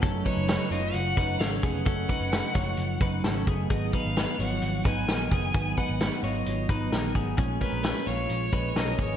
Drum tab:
HH |xxxxxxxx|xxxxxxxx|xxxxxxxx|xxxxxxxx|
SD |--o--oo-|--o---o-|--o--oo-|--o---o-|
BD |oo---o-o|oo-o-o-o|oo---o-o|oo---o-o|

HH |xxxxxxxx|
SD |--o---o-|
BD |oo---o-o|